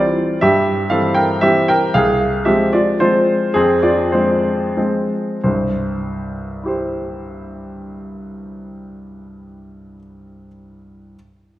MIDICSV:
0, 0, Header, 1, 2, 480
1, 0, Start_track
1, 0, Key_signature, 0, "major"
1, 0, Tempo, 508044
1, 404, Time_signature, 3, 2, 24, 8
1, 2330, Tempo, 552486
1, 3770, Tempo, 657174
1, 4730, Tempo, 601202
1, 5690, Tempo, 591133
1, 7610, Tempo, 571429
1, 9783, End_track
2, 0, Start_track
2, 0, Title_t, "Grand piano"
2, 0, Program_c, 0, 0
2, 0, Note_on_c, 0, 52, 32
2, 0, Note_on_c, 0, 55, 33
2, 0, Note_on_c, 0, 60, 35
2, 0, Note_on_c, 0, 65, 45
2, 0, Note_on_c, 0, 74, 63
2, 362, Note_off_c, 0, 52, 0
2, 365, Note_off_c, 0, 55, 0
2, 367, Note_off_c, 0, 60, 0
2, 371, Note_off_c, 0, 65, 0
2, 390, Note_on_c, 0, 76, 72
2, 399, Note_off_c, 0, 74, 0
2, 399, Note_on_c, 0, 43, 46
2, 401, Note_on_c, 0, 67, 55
2, 578, Control_c, 0, 64, 127
2, 832, Note_off_c, 0, 67, 0
2, 849, Note_on_c, 0, 77, 61
2, 850, Note_off_c, 0, 43, 0
2, 852, Note_on_c, 0, 52, 31
2, 858, Note_on_c, 0, 55, 30
2, 859, Note_off_c, 0, 76, 0
2, 864, Note_on_c, 0, 69, 47
2, 866, Note_on_c, 0, 60, 33
2, 1082, Note_on_c, 0, 79, 60
2, 1087, Note_off_c, 0, 69, 0
2, 1096, Note_off_c, 0, 77, 0
2, 1099, Note_on_c, 0, 70, 47
2, 1309, Note_off_c, 0, 52, 0
2, 1312, Note_off_c, 0, 55, 0
2, 1316, Note_off_c, 0, 60, 0
2, 1333, Note_off_c, 0, 70, 0
2, 1335, Note_on_c, 0, 76, 67
2, 1339, Note_on_c, 0, 52, 31
2, 1342, Note_off_c, 0, 79, 0
2, 1347, Note_on_c, 0, 55, 33
2, 1348, Note_on_c, 0, 60, 37
2, 1348, Note_on_c, 0, 67, 47
2, 1362, Control_c, 0, 64, 0
2, 1585, Note_off_c, 0, 67, 0
2, 1590, Note_on_c, 0, 79, 68
2, 1596, Note_off_c, 0, 76, 0
2, 1600, Note_on_c, 0, 70, 51
2, 1800, Note_off_c, 0, 52, 0
2, 1805, Note_off_c, 0, 55, 0
2, 1805, Note_off_c, 0, 60, 0
2, 1826, Note_off_c, 0, 70, 0
2, 1834, Note_on_c, 0, 77, 74
2, 1837, Note_on_c, 0, 36, 48
2, 1838, Note_off_c, 0, 79, 0
2, 1843, Note_on_c, 0, 68, 53
2, 2008, Control_c, 0, 64, 127
2, 2295, Note_off_c, 0, 68, 0
2, 2311, Note_off_c, 0, 36, 0
2, 2316, Note_on_c, 0, 76, 58
2, 2323, Note_on_c, 0, 53, 32
2, 2323, Note_on_c, 0, 67, 46
2, 2324, Note_off_c, 0, 77, 0
2, 2327, Note_on_c, 0, 56, 31
2, 2329, Note_on_c, 0, 60, 34
2, 2342, Control_c, 0, 64, 0
2, 2545, Note_off_c, 0, 67, 0
2, 2558, Note_off_c, 0, 76, 0
2, 2558, Note_on_c, 0, 74, 58
2, 2569, Note_on_c, 0, 65, 45
2, 2768, Note_off_c, 0, 53, 0
2, 2769, Note_off_c, 0, 56, 0
2, 2770, Note_off_c, 0, 60, 0
2, 2788, Note_off_c, 0, 65, 0
2, 2794, Note_on_c, 0, 72, 65
2, 2800, Note_on_c, 0, 53, 32
2, 2801, Note_on_c, 0, 65, 49
2, 2802, Note_off_c, 0, 74, 0
2, 2806, Note_on_c, 0, 56, 32
2, 2806, Note_on_c, 0, 60, 35
2, 3241, Note_off_c, 0, 53, 0
2, 3243, Note_off_c, 0, 65, 0
2, 3244, Note_off_c, 0, 56, 0
2, 3244, Note_off_c, 0, 60, 0
2, 3262, Note_on_c, 0, 68, 63
2, 3273, Note_off_c, 0, 72, 0
2, 3277, Note_on_c, 0, 41, 42
2, 3277, Note_on_c, 0, 60, 49
2, 3454, Control_c, 0, 64, 127
2, 3500, Note_off_c, 0, 60, 0
2, 3509, Note_off_c, 0, 68, 0
2, 3512, Note_on_c, 0, 74, 58
2, 3516, Note_on_c, 0, 65, 46
2, 3752, Note_off_c, 0, 65, 0
2, 3755, Note_off_c, 0, 41, 0
2, 3768, Note_off_c, 0, 74, 0
2, 3768, Note_on_c, 0, 72, 45
2, 3776, Note_on_c, 0, 53, 28
2, 3779, Note_on_c, 0, 65, 33
2, 3782, Note_on_c, 0, 56, 31
2, 3784, Note_on_c, 0, 60, 31
2, 4212, Note_off_c, 0, 53, 0
2, 4215, Note_off_c, 0, 56, 0
2, 4216, Note_off_c, 0, 60, 0
2, 4242, Note_on_c, 0, 53, 28
2, 4242, Note_on_c, 0, 60, 30
2, 4245, Note_on_c, 0, 56, 28
2, 4251, Control_c, 0, 64, 0
2, 4471, Note_off_c, 0, 65, 0
2, 4495, Note_off_c, 0, 72, 0
2, 4704, Note_off_c, 0, 53, 0
2, 4704, Note_off_c, 0, 60, 0
2, 4705, Note_off_c, 0, 56, 0
2, 4728, Note_on_c, 0, 72, 40
2, 4729, Note_on_c, 0, 36, 34
2, 4735, Note_on_c, 0, 43, 33
2, 4900, Control_c, 0, 64, 127
2, 5687, Note_on_c, 0, 64, 27
2, 5704, Note_on_c, 0, 67, 25
2, 5708, Note_off_c, 0, 72, 0
2, 5720, Note_on_c, 0, 72, 28
2, 8416, Note_off_c, 0, 36, 0
2, 8422, Note_off_c, 0, 43, 0
2, 8835, Note_off_c, 0, 64, 0
2, 8844, Note_off_c, 0, 67, 0
2, 8852, Note_off_c, 0, 72, 0
2, 9415, Control_c, 0, 64, 0
2, 9783, End_track
0, 0, End_of_file